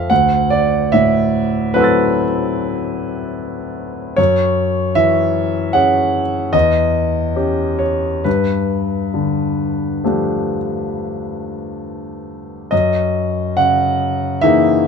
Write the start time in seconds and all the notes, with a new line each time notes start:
Already playing: F2 F4 A4 E5 F5
0.10 D2 F#5
0.50 D5
0.92 A2 E5
1.74 F#3 C4 E4 A4 B4 F#5 C6
1.81 E6 A6
4.16 F#2 C#5
4.95 E3 E5
5.73 C#4 G#4 F#5
6.53 E2 D#5
7.36 C#4 G4
7.79 C#5
8.24 G2 B4
9.14 D3
10.04 F3 A3 D4 G4
12.71 F#2 D#5
13.57 C#3 F#5
14.41 E3 A#3 D#4 G#4 E5